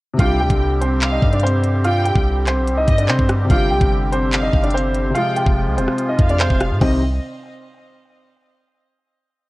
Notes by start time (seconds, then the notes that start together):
0.13 C3 G3
0.19 C2 D3 G3 C4 D4 F4 G4 F5 G5, kick, closed hi-hat
0.24 G4
0.40 D2 G4 G5
0.50 C2, kick, closed hi-hat
0.81 C4 C5, closed hi-hat
1.02 F5, clap, closed hi-hat
1.12 D#4 D#5
1.22 G2, kick
1.33 D4 D5, closed hi-hat
1.40 C5, closed hi-hat
1.44 C4, closed hi-hat
1.64 closed hi-hat
1.84 F4 F5 G5, closed hi-hat
2.05 G4 G5, closed hi-hat
2.15 C2, kick
2.47 C4 C5, clap, closed hi-hat
2.57 B1
2.67 closed hi-hat
2.72 C2
2.77 D#4 D#5
2.88 G2 D#5, kick, closed hi-hat
2.98 D4 D5, closed hi-hat
3.09 C3 C4 C5, clap, closed hi-hat
3.19 G2, kick
3.29 cross-stick, closed hi-hat
3.45 C3 G3
3.50 G1 D4 F4 F5 G5, kick, closed hi-hat
3.55 G4
3.70 B1 G4 G5
3.81 G1, kick, closed hi-hat
4.12 C4 C5, closed hi-hat
4.33 F5, clap, closed hi-hat
4.43 D#4 D#5
4.53 G1, kick
4.64 D4 D5, closed hi-hat
4.71 C5, closed hi-hat
4.75 C4, closed hi-hat
4.95 closed hi-hat
5.10 C3 F3
5.15 C3 F3 G#3 F4 F5 G5, closed hi-hat
5.21 F4
5.36 G4 G5, closed hi-hat
5.47 F1, kick
5.67 C2
5.77 F1 C4 C5, closed hi-hat
5.88 cross-stick
5.98 closed hi-hat
6.09 D#4 D#5
6.19 F2 F5, kick, closed hi-hat
6.29 D4 D5, closed hi-hat
6.40 C4 C5, clap, closed hi-hat
6.50 F1, kick
6.60 cross-stick, closed hi-hat
6.71 G#2
6.81 C2 C3 D#3 G3 C4 D#4 D#5, kick, crash